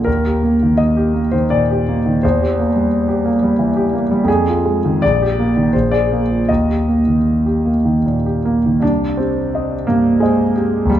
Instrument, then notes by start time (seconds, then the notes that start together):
grand piano
0.05 D#2 A#4
0.25 G4
0.43 A#3
0.63 D#3
0.78 D#5
0.97 G4
1.14 A#3
1.32 D#3 C5
1.50 A#2 D5
1.71 G4
1.88 A#3
2.06 D#3
2.23 E2 C5
2.42 G4
2.59 A#3
2.75 G3
3.08 G4
3.25 A#3
3.42 G3
3.59 E3
3.76 G4
3.93 A#3
4.11 G3
4.24 F2 G#4
4.48 F4
4.66 G#3
4.85 D#3
5.02 A#1 D5
5.22 G4
5.39 A#3
5.57 D#3
5.73 A#1 C5
5.91 G#4 D5
6.12 A#3
6.30 F3
6.49 D#2 D#5
6.69 G4
6.88 A#3
7.07 D#3
7.46 G4
7.65 A#3
7.85 D#3
8.06 A#2
8.26 G4
8.45 A#3
8.66 D#3
8.80 C2 D4
9.17 C4 G4
9.55 C5 D#5
9.87 G2 A#3
10.20 G#3 C5 D#5
10.56 G4
10.85 D#2
10.90 G3